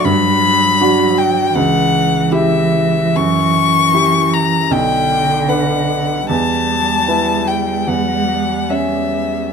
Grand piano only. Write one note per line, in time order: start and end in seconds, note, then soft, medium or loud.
0.05 0.79 G2 medium
0.81 1.51 D4 soft
0.81 1.52 F#4 soft
1.55 2.29 C#2 medium
2.31 3.11 E4 soft
2.31 3.11 G4 medium
3.15 3.91 F#2 medium
3.93 4.67 E4 soft
3.93 4.67 G4 soft
4.71 5.46 B1 medium
5.48 6.25 D4 soft
5.48 6.25 B4 soft
6.29 7.06 E2 medium
7.08 7.82 E4 soft
7.08 7.82 B4 soft
7.87 8.68 E2 soft
8.70 9.53 C#4 soft
8.70 9.53 C#5 soft